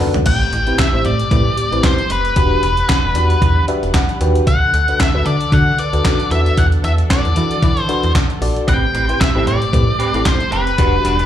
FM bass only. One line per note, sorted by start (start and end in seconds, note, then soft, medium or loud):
0.15 0.23 D2 loud
0.26 0.46 A1 loud
0.53 0.73 A1 loud
0.94 1.07 A1 loud
1.05 1.25 A2 loud
1.31 1.51 A2 loud
1.72 1.81 A1 loud
2.10 2.30 F1 medium
2.36 2.56 E1 loud
2.63 2.83 E1 loud
3.04 3.13 E1 loud
3.16 3.36 E2 loud
3.42 3.62 E2 loud
3.83 3.92 E1 medium
4.21 4.41 D#2 loud
4.47 4.67 D2 loud
4.74 4.93 D2 loud
5.15 5.23 D2 medium
5.26 5.46 D3 medium
5.52 5.72 D3 loud
5.93 6.02 D2 loud
6.31 6.51 E2 loud
6.58 6.78 E2 loud
6.84 7.04 E2 loud
7.25 7.34 E2 medium
7.37 7.57 E3 loud
7.63 7.83 E3 loud
8.04 8.13 E2 loud
8.41 8.62 A#1 medium
8.68 8.88 A1 loud
8.95 9.15 A1 loud
9.35 9.48 A1 loud
9.47 9.67 A2 loud
9.73 9.93 A2 loud
10.14 10.23 A1 medium
10.52 10.72 F1 loud
10.78 10.99 E1 loud
11.05 11.25 E1 loud